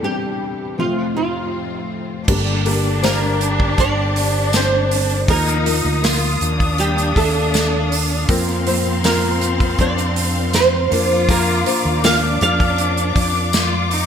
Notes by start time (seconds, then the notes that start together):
Already playing: E2 C3 E3 G3 C4 D4 E4 G4
0.03 G3 C4 D4 G4
0.77 F1 F2 A2 F3 A3 C4 F4
1.17 F4
2.27 G1 G2 A#3 D4 G4 A4 A#4 D5 A5, kick, crash
2.65 A#3 D4 G4 A4 A#4, hi-hat pedal, open hi-hat
3.02 A#3 D4 G4 A#4 C5, snare, hi-hat pedal, open hi-hat, tambourine
3.41 hi-hat pedal, open hi-hat
3.60 kick
3.78 G1 D4 D5, kick, hi-hat pedal, open hi-hat
4.16 hi-hat pedal, open hi-hat
4.53 C4 C5, snare, hi-hat pedal, open hi-hat, tambourine
4.91 hi-hat pedal, open hi-hat
5.09 open hi-hat
5.28 D#2 F3 A#3 D#4 F4 A#4 F5 D#6, kick, hi-hat pedal, open hi-hat
5.47 hi-hat pedal
5.65 F3 A#3 D#4 F4 A#4, hi-hat pedal, open hi-hat
5.84 D2
6.02 F3 A#3 F4 A#4, snare, hi-hat pedal, open hi-hat, tambourine
6.41 D#2 D4, hi-hat pedal, open hi-hat
6.60 kick, open hi-hat
6.78 G3 G4, hi-hat pedal, open hi-hat
6.98 hi-hat pedal
7.16 D#2 A3 A4, kick, hi-hat pedal, open hi-hat
7.54 snare, hi-hat pedal, open hi-hat, tambourine
7.92 hi-hat pedal, open hi-hat
8.28 F2 F3 A#3 C4 F4 A#4 C5 C6, kick, hi-hat pedal, open hi-hat
8.67 F3 A#3 C4 F4 C5, hi-hat pedal, open hi-hat
9.03 F3 A#3 C4 F4 A#4, snare, hi-hat pedal, open hi-hat, tambourine
9.41 hi-hat pedal, open hi-hat
9.60 kick, open hi-hat
9.79 F2 D4 D5, kick, hi-hat pedal, open hi-hat
9.98 hi-hat pedal
10.16 hi-hat pedal, open hi-hat
10.53 C4 C5, snare, hi-hat pedal, open hi-hat, tambourine
10.90 F2 F3 A#3 D4 F4 A#4 D5 D6, hi-hat pedal, open hi-hat
11.29 A#3 A#4, kick, hi-hat pedal, open hi-hat
11.65 F3 A#3 D4 F4 C5, hi-hat pedal, open hi-hat
11.85 D#2
12.02 F3 A#3 D4 F4 A#4 F5, snare, hi-hat pedal, open hi-hat, tambourine
12.41 F2 F4 F5, hi-hat pedal, open hi-hat
12.60 kick, open hi-hat
12.78 hi-hat pedal, open hi-hat
12.97 hi-hat pedal
13.16 F2, kick, hi-hat pedal, open hi-hat
13.53 F4, snare, hi-hat pedal, open hi-hat, tambourine
13.91 D#4, hi-hat pedal, open hi-hat